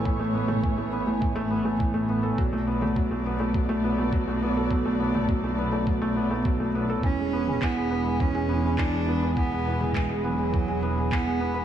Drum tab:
CP |----------------|----------------|----------------|----x-------x---|
T2 |---o------------|---o------------|---o------------|---o------------|
BD |o---o---o---o---|o---o---o---o---|o---o---o---o---|o---o---o---o---|

CP |----x-------x---|
T2 |---o------------|
BD |o---o---o---o---|